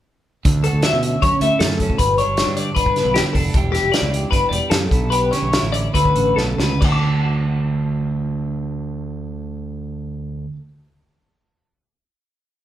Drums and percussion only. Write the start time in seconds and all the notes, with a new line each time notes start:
0.45 kick, closed hi-hat
0.64 closed hi-hat
0.83 snare, closed hi-hat
1.03 closed hi-hat
1.22 kick, closed hi-hat
1.41 closed hi-hat
1.60 snare, closed hi-hat
1.71 snare
1.80 kick, closed hi-hat
1.90 kick
1.99 kick, closed hi-hat
2.18 closed hi-hat
2.37 snare, closed hi-hat
2.57 closed hi-hat
2.76 kick, closed hi-hat
2.86 kick
2.96 snare, closed hi-hat
3.16 snare, closed hi-hat
3.35 kick, open hi-hat
3.54 kick, closed hi-hat
3.75 snare, closed hi-hat
3.94 snare, closed hi-hat
4.14 closed hi-hat
4.32 kick, closed hi-hat
4.53 closed hi-hat
4.71 snare, closed hi-hat
4.91 kick, closed hi-hat
5.12 closed hi-hat
5.33 snare, closed hi-hat
5.53 snare, closed hi-hat
5.74 closed hi-hat
5.95 kick, closed hi-hat
6.05 kick
6.16 closed hi-hat
6.38 snare
6.60 snare
6.82 kick, crash